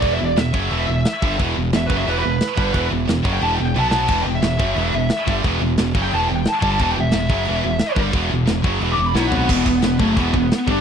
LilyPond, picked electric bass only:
\new Staff \with { instrumentName = "Picked electric bass" } { \clef bass \time 4/4 \key e \minor \tempo 4 = 178 e,,8 e,,8 e,,8 fis,,8 e,,8 e,,8 r8 g,,8 | e,,8 e,,8 e,,8 fis,,8 e,,8 e,,8 r8 g,,8 | e,,8 e,,8 e,,8 fis,,8 e,,8 e,,8 b,,4 | e,,8 e,,8 e,,8 fis,,8 e,,8 e,,8 r8 g,,8 |
e,,8 e,,8 e,,8 fis,,8 e,,8 e,,8 r8 g,,8 | e,,8 e,,8 e,,8 fis,,8 e,,8 e,,8 r8 g,,8 | e,,8 e,,8 e,,8 fis,,8 e,,8 e,,8 b,,4 | e,,8 e,,8 e,,8 fis,,8 e,,8 e,,8 r8 g,,8 | }